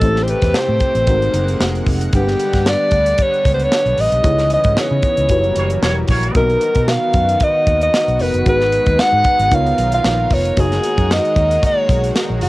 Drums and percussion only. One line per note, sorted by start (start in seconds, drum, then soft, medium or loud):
0.01 kick loud
0.01 closed hi-hat medium
0.16 snare soft
0.28 closed hi-hat medium
0.42 kick medium
0.42 snare soft
0.42 closed hi-hat medium
0.54 snare loud
0.80 kick medium
0.80 closed hi-hat medium
0.95 closed hi-hat medium
1.07 kick loud
1.07 closed hi-hat medium
1.22 closed hi-hat soft
1.34 closed hi-hat medium
1.48 closed hi-hat medium
1.61 snare loud
1.75 closed hi-hat soft
1.86 kick medium
1.86 open hi-hat medium
2.01 closed hi-hat medium
2.13 kick loud
2.13 closed hi-hat medium
2.28 snare soft
2.40 closed hi-hat medium
2.53 kick medium
2.53 snare soft
2.53 closed hi-hat medium
2.66 snare loud
2.91 kick medium
2.91 closed hi-hat medium
3.06 closed hi-hat medium
3.18 kick loud
3.18 closed hi-hat loud
3.33 closed hi-hat soft
3.45 kick loud
3.45 closed hi-hat medium
3.59 closed hi-hat soft
3.72 snare loud
3.86 closed hi-hat soft
3.97 open hi-hat medium
4.12 closed hi-hat medium
4.24 kick loud
4.24 closed hi-hat medium
4.38 snare soft
4.38 closed hi-hat soft
4.50 closed hi-hat medium
4.64 kick medium
4.64 closed hi-hat medium
4.77 snare loud
5.02 kick medium
5.02 closed hi-hat medium
5.17 closed hi-hat medium
5.29 kick loud
5.29 closed hi-hat medium
5.44 closed hi-hat soft
5.56 closed hi-hat medium
5.70 closed hi-hat medium
5.83 snare loud
6.08 kick medium
6.08 open hi-hat medium
6.23 closed hi-hat medium
6.35 kick loud
6.35 closed hi-hat medium
6.50 closed hi-hat soft
6.61 closed hi-hat medium
6.75 kick medium
6.75 closed hi-hat medium
6.88 snare loud
7.13 kick loud
7.13 closed hi-hat medium
7.29 closed hi-hat medium
7.40 kick loud
7.40 closed hi-hat medium
7.67 kick loud
7.67 closed hi-hat medium
7.81 closed hi-hat medium
7.94 snare loud
8.08 closed hi-hat soft
8.19 open hi-hat medium
8.34 closed hi-hat medium
8.46 kick loud
8.46 closed hi-hat medium
8.61 snare soft
8.72 closed hi-hat medium
8.86 kick medium
8.86 closed hi-hat medium
8.99 snare loud
9.24 kick loud
9.24 closed hi-hat medium
9.40 closed hi-hat medium
9.52 kick loud
9.52 closed hi-hat medium
9.67 closed hi-hat soft
9.78 closed hi-hat medium
9.92 closed hi-hat medium
10.04 snare loud
10.30 kick loud
10.30 open hi-hat medium
10.45 closed hi-hat medium
10.57 kick loud
10.57 closed hi-hat medium
10.72 snare soft
10.72 closed hi-hat soft
10.83 closed hi-hat medium
10.98 kick medium
10.98 closed hi-hat medium
11.11 snare loud
11.25 closed hi-hat soft
11.36 kick loud
11.36 closed hi-hat medium
11.51 closed hi-hat medium
11.63 kick loud
11.63 closed hi-hat loud
11.89 kick loud
11.89 closed hi-hat medium
12.04 closed hi-hat medium
12.16 snare loud
12.41 open hi-hat medium